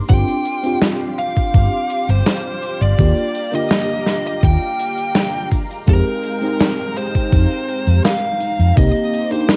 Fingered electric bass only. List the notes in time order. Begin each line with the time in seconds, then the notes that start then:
0.10 G1
1.54 G1
2.09 G1
2.81 G1
2.99 D#2
4.43 D#2
5.88 F2
7.32 F2
7.87 F2
8.59 F2
8.77 C2